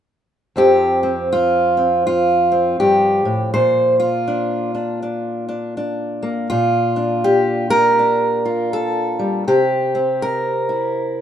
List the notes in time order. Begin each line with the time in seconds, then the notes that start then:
0.56 F2 F3 C4 G4
1.03 C4
1.33 F4
1.77 C4
2.07 F4
2.52 C4
2.80 G2 G4
3.25 A2
3.54 A#2 C5
4.00 F4
4.28 D4
4.75 D4
5.03 D4
5.49 D4
5.77 D4
6.23 A#3
6.50 A#2 F4
6.96 D4
7.24 G4
7.70 A#4
7.99 D4
8.45 F4
8.73 A4
9.19 G3
9.47 C3 G4
9.95 C4
10.22 A#4
10.69 E4